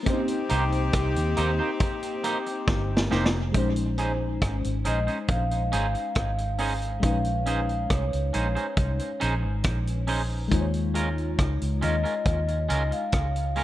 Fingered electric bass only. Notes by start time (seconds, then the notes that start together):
0.51 C2
0.94 C2
1.17 D#2
1.38 D#2
2.68 G1
3.12 F1
3.55 A#1
4.42 G#1
4.65 G#1
4.87 A#1
5.29 A#1
5.74 G#1
6.17 G#1
7.04 A#1
7.91 C2
8.14 C#2
8.35 A#1
8.78 C2
9.22 A#1
9.45 G#1
9.65 A#1
10.52 D#2
11.39 C#2
11.62 C#2
11.83 D#2
12.26 D#2
12.70 C#2
13.14 C#2